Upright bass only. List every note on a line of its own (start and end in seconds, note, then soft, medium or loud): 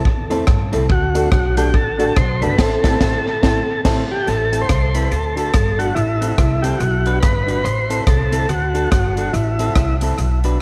0.05 0.41 E2 loud
0.48 0.69 G2 loud
0.74 0.88 C2 medium
0.90 1.26 D2 loud
1.32 1.74 B1 medium
1.74 2.10 A1 loud
2.17 2.43 B1 loud
2.41 2.56 G1 medium
2.59 2.76 A1 loud
2.84 2.96 A1 loud
3.01 3.18 A1 loud
3.43 3.60 A1 loud
3.85 4.02 A1 loud
4.28 4.64 A1 loud
4.69 5.05 C2 medium
5.11 5.47 D2 medium
5.55 5.90 G1 medium
5.96 6.32 A1 loud
6.38 6.74 C2 medium
6.80 7.16 B1 loud
7.23 7.59 G1 medium
7.64 8.01 A1 loud
8.07 8.43 C2 medium
8.49 8.85 D2 loud
8.92 9.28 G1 medium
9.33 9.70 A1 loud
9.76 10.12 C2 medium
10.18 10.54 B1 loud